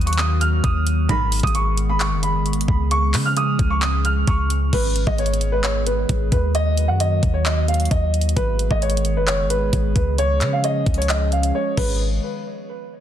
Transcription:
0.00 0.61 D#2 loud
0.00 1.06 D#3 medium
0.00 1.07 F#3 medium
0.00 1.07 A#3 medium
0.00 1.07 F#4 medium
0.00 closed hi-hat medium
0.06 0.16 C#6 medium
0.06 closed hi-hat medium
0.13 closed hi-hat medium
0.18 0.36 D#6 medium
0.18 clap loud
0.18 closed hi-hat medium
0.41 0.59 F6 medium
0.41 closed hi-hat medium
0.64 1.07 D#2 loud
0.64 1.06 D#6 medium
0.64 kick loud
0.64 closed hi-hat medium
0.87 closed hi-hat medium
1.09 1.42 G#1 loud
1.09 1.29 B1 loud
1.09 1.29 G#2 loud
1.09 1.29 D#3 loud
1.09 2.89 D#3 medium
1.09 4.69 G#3 medium
1.09 2.89 B3 medium
1.09 4.69 G#4 medium
1.09 1.41 B5 loud
1.09 kick loud
1.09 closed hi-hat medium
1.32 closed hi-hat soft
1.32 open hi-hat medium
1.40 2.13 G#1 loud
1.40 1.52 D#6 medium
1.40 kick loud
1.40 closed hi-hat medium
1.47 closed hi-hat medium
1.55 1.87 C#6 medium
1.55 closed hi-hat medium
1.77 closed hi-hat medium
1.89 1.98 B5 medium
2.00 2.18 C#6 medium
2.00 clap loud
2.00 closed hi-hat medium
2.12 2.41 F#1 loud
2.23 2.66 B5 medium
2.23 closed hi-hat medium
2.40 2.67 G#1 loud
2.46 closed hi-hat medium
2.53 closed hi-hat medium
2.61 closed hi-hat medium
2.68 3.15 C#2 loud
2.68 2.86 B5 medium
2.68 kick loud
2.91 4.71 F3 medium
2.91 4.71 C#4 medium
2.91 3.23 C#6 loud
2.91 closed hi-hat medium
3.14 3.57 C#3 loud
3.14 clap medium
3.14 open hi-hat medium
3.25 3.34 F6 medium
3.37 3.69 D#6 medium
3.37 closed hi-hat medium
3.59 4.25 C#2 loud
3.59 kick loud
3.59 closed hi-hat medium
3.70 3.79 C#6 medium
3.82 4.00 D#6 medium
3.82 clap loud
3.82 closed hi-hat medium
4.05 4.23 F6 medium
4.05 closed hi-hat medium
4.27 4.71 C#2 loud
4.27 4.70 C#6 medium
4.27 kick loud
4.27 closed hi-hat medium
4.50 closed hi-hat medium
4.73 5.06 G#1 loud
4.73 8.33 D#3 medium
4.73 6.53 G#3 medium
4.73 6.53 B3 medium
4.73 6.53 G#4 medium
4.73 5.05 B4 medium
4.73 kick loud
4.73 closed hi-hat medium
4.73 crash loud
4.96 closed hi-hat medium
5.07 6.05 G#1 loud
5.07 5.16 D#5 medium
5.07 kick loud
5.18 5.51 C#5 medium
5.18 closed hi-hat medium
5.26 closed hi-hat medium
5.34 closed hi-hat medium
5.41 closed hi-hat medium
5.52 5.61 B4 medium
5.63 5.81 C#5 medium
5.63 clap loud
5.63 closed hi-hat medium
5.87 6.29 B4 medium
5.87 closed hi-hat medium
6.09 6.31 G#1 loud
6.09 kick loud
6.09 closed hi-hat medium
6.32 6.90 D#2 loud
6.32 6.50 B4 medium
6.32 kick medium
6.32 closed hi-hat medium
6.55 8.35 F#3 medium
6.55 8.35 A#3 medium
6.55 8.35 F#4 medium
6.55 6.87 D#5 loud
6.55 closed hi-hat medium
6.77 closed hi-hat medium
6.88 7.21 F#2 loud
6.88 6.97 F#5 medium
7.00 7.32 D#5 medium
7.00 closed hi-hat medium
7.23 7.88 D#2 loud
7.23 kick loud
7.23 closed hi-hat medium
7.34 7.43 C#5 medium
7.46 7.64 D#5 medium
7.46 clap loud
7.46 closed hi-hat medium
7.68 7.86 F5 medium
7.68 closed hi-hat medium
7.74 closed hi-hat medium
7.80 closed hi-hat medium
7.85 closed hi-hat medium
7.91 8.35 D#2 loud
7.91 8.34 D#5 medium
7.91 kick loud
7.91 closed hi-hat medium
8.14 closed hi-hat medium
8.21 closed hi-hat medium
8.29 closed hi-hat medium
8.36 8.69 G#1 loud
8.36 10.17 D#3 medium
8.36 11.74 G#3 medium
8.36 10.17 B3 medium
8.36 11.74 G#4 medium
8.36 8.69 B4 loud
8.36 kick loud
8.36 closed hi-hat medium
8.59 closed hi-hat medium
8.71 9.18 G#1 loud
8.71 8.80 D#5 medium
8.71 kick loud
8.82 9.14 C#5 medium
8.82 closed hi-hat medium
8.90 closed hi-hat medium
8.97 closed hi-hat medium
9.05 closed hi-hat medium
9.16 9.46 F#1 loud
9.16 9.25 B4 medium
9.27 9.45 C#5 medium
9.27 clap loud
9.27 closed hi-hat medium
9.45 9.72 G#1 loud
9.50 9.93 B4 medium
9.50 closed hi-hat medium
9.73 9.95 G#1 loud
9.73 kick loud
9.73 closed hi-hat medium
9.95 10.43 C#2 loud
9.95 10.13 B4 medium
9.95 kick medium
9.95 closed hi-hat medium
10.18 11.76 F3 medium
10.18 11.76 C#4 medium
10.18 10.51 C#5 loud
10.18 closed hi-hat medium
10.41 10.84 C#3 loud
10.41 clap medium
10.41 closed hi-hat medium
10.53 10.62 F5 medium
10.64 10.96 D#5 medium
10.64 closed hi-hat medium
10.86 11.52 C#2 loud
10.86 kick loud
10.86 closed hi-hat soft
10.94 11.07 C#5 medium
10.94 closed hi-hat medium
11.02 closed hi-hat medium
11.09 11.27 D#5 medium
11.09 clap loud
11.09 closed hi-hat medium
11.32 11.50 F5 medium
11.32 closed hi-hat soft
11.43 closed hi-hat medium
11.55 11.76 C#5 medium
11.77 12.20 G#1 loud
11.77 11.99 D#3 medium
11.77 11.99 G#3 medium
11.77 11.99 B3 medium
11.77 11.99 G#4 medium
11.77 11.99 B4 medium
11.77 kick loud
11.77 crash medium

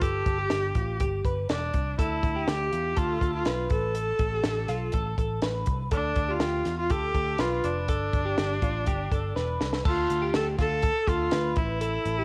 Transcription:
0.01 0.22 G1 loud
0.01 1.01 G4 medium
0.01 0.37 A4 medium
0.01 kick medium
0.01 closed hi-hat medium
0.26 0.47 G1 medium
0.26 kick medium
0.26 closed hi-hat medium
0.38 0.76 G4 medium
0.50 0.72 G1 medium
0.50 snare loud
0.50 closed hi-hat medium
0.75 1.02 A1 medium
0.75 1.00 F4 medium
0.75 kick medium
0.75 closed hi-hat medium
1.00 1.21 G1 medium
1.00 1.25 G4 medium
1.00 kick medium
1.00 closed hi-hat medium
1.25 1.45 G1 medium
1.25 1.49 B4 medium
1.25 kick medium
1.25 closed hi-hat medium
1.49 1.70 E1 medium
1.49 1.96 D4 medium
1.49 1.96 D5 medium
1.49 snare medium
1.49 closed hi-hat medium
1.74 1.94 C2 medium
1.74 kick medium
1.74 closed hi-hat medium
1.98 2.19 D2 medium
1.98 2.50 E4 medium
1.98 2.34 A4 medium
1.98 kick medium
1.98 closed hi-hat medium
2.23 2.43 D2 medium
2.23 kick medium
2.23 closed hi-hat medium
2.36 2.72 G4 medium
2.48 2.68 D2 medium
2.48 2.99 G4 medium
2.48 snare loud
2.48 closed hi-hat medium
2.72 2.93 E2 medium
2.72 2.97 F4 medium
2.72 closed hi-hat medium
2.97 3.17 D2 loud
2.97 3.34 F4 medium
2.97 3.20 A4 medium
2.97 kick medium
2.97 closed hi-hat medium
3.21 3.42 D2 medium
3.21 3.45 A4 medium
3.21 kick medium
3.21 closed hi-hat medium
3.34 3.69 F4 medium
3.45 3.67 B1 medium
3.45 3.95 B4 medium
3.45 snare medium
3.45 closed hi-hat medium
3.70 4.11 A1 medium
3.70 5.14 A4 medium
3.70 kick medium
3.70 closed hi-hat medium
3.95 4.32 A4 medium
3.95 closed hi-hat medium
4.19 4.40 A1 medium
4.19 kick medium
4.19 closed hi-hat medium
4.32 4.67 G4 medium
4.44 4.65 A1 medium
4.44 snare loud
4.44 closed hi-hat medium
4.68 4.89 B1 medium
4.68 4.94 F4 medium
4.68 snare soft
4.68 closed hi-hat medium
4.92 5.14 A1 medium
4.92 5.17 A4 medium
4.92 kick medium
4.92 closed hi-hat medium
5.18 5.38 A1 medium
5.18 5.43 A4 medium
5.18 kick medium
5.18 closed hi-hat medium
5.42 5.63 A1 medium
5.42 5.89 B4 medium
5.42 snare medium
5.42 closed hi-hat medium
5.66 5.88 C2 medium
5.66 kick medium
5.66 closed hi-hat medium
5.91 6.12 D2 loud
5.91 6.32 D4 medium
5.91 6.27 A4 medium
5.91 kick medium
5.91 closed hi-hat medium
6.16 6.37 D2 medium
6.16 kick medium
6.16 closed hi-hat medium
6.29 6.78 F4 medium
6.29 6.66 G4 medium
6.40 6.61 D2 medium
6.40 snare loud
6.40 closed hi-hat medium
6.65 6.90 E2 medium
6.65 6.91 F4 medium
6.65 snare soft
6.65 closed hi-hat medium
6.79 6.92 F4 medium
6.90 7.11 D2 medium
6.90 7.41 G4 loud
6.90 7.14 A4 medium
6.90 kick medium
6.90 closed hi-hat medium
7.14 7.35 D2 medium
7.14 7.39 A4 medium
7.14 kick medium
7.14 closed hi-hat medium
7.38 7.60 B1 medium
7.38 7.66 F4 medium
7.38 7.86 B4 medium
7.38 snare loud
7.38 closed hi-hat medium
7.64 7.89 F1 medium
7.64 9.61 D4 medium
7.64 closed hi-hat medium
7.88 8.09 G1 medium
7.88 8.24 A4 loud
7.88 kick medium
7.88 closed hi-hat medium
8.13 8.34 G1 medium
8.13 kick medium
8.13 closed hi-hat medium
8.25 8.60 G4 medium
8.38 8.58 G1 medium
8.38 snare loud
8.38 closed hi-hat medium
8.62 8.89 A1 medium
8.62 8.87 F4 medium
8.62 kick medium
8.62 closed hi-hat medium
8.86 9.07 G1 loud
8.86 9.12 G4 medium
8.86 kick medium
8.86 closed hi-hat medium
9.11 9.32 G1 medium
9.11 9.36 A4 medium
9.11 kick medium
9.11 closed hi-hat medium
9.36 9.57 E1 medium
9.36 9.82 B4 medium
9.36 snare soft
9.61 9.81 C2 medium
9.61 snare medium
9.73 snare medium
9.85 10.06 D2 medium
9.85 10.32 F4 medium
9.85 10.20 A4 loud
9.85 kick loud
9.85 crash medium
10.10 10.30 D2 medium
10.10 closed hi-hat medium
10.22 10.57 G4 medium
10.34 10.55 D2 medium
10.34 10.46 A4 loud
10.34 snare loud
10.34 closed hi-hat medium
10.58 10.89 D2 medium
10.58 10.83 F4 medium
10.58 11.10 A4 loud
10.58 kick medium
10.58 snare soft
10.58 closed hi-hat medium
10.82 11.07 A4 medium
10.82 kick loud
10.82 closed hi-hat medium
11.07 11.28 D2 medium
11.07 11.59 F4 loud
11.07 11.32 A4 medium
11.07 kick medium
11.07 closed hi-hat medium
11.31 11.53 D2 loud
11.31 11.79 B4 medium
11.31 snare medium
11.31 closed hi-hat medium
11.56 11.97 A1 medium
11.56 12.24 E4 medium
11.56 kick loud
11.56 closed hi-hat medium
11.81 12.16 A4 medium
11.81 closed hi-hat loud
12.05 12.24 A1 medium
12.05 closed hi-hat medium
12.19 12.24 G4 medium

